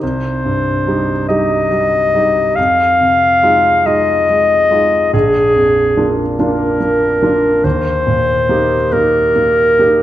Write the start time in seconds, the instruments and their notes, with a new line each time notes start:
0.01 grand piano C2, clarinet C5
0.45 grand piano G2
0.87 grand piano G3 D#4 G4
1.29 grand piano G3 D#4 G4, clarinet D#5
1.71 grand piano G3
2.14 grand piano G3 D#4 G4
2.56 grand piano F2, clarinet F5
3.01 grand piano C3
3.43 grand piano G#3 D#4 F4
3.85 grand piano G#3 D#4 F4, clarinet D#5
4.29 grand piano G#3
4.71 grand piano G#3 D#4 F4
5.13 grand piano A#1, clarinet G#4
5.55 grand piano F2
5.97 grand piano A#3 D4 F4
6.39 grand piano A#3 D4 F4, clarinet A#4
6.81 grand piano A#3
7.23 grand piano A#3 D4 F4
7.64 grand piano D#2, clarinet C5
8.07 grand piano A#2
8.49 grand piano A#3 D#4 G4
8.92 grand piano A#3 D#4 G4, clarinet A#4
9.36 grand piano A#3
9.79 grand piano A#3 D#4 G4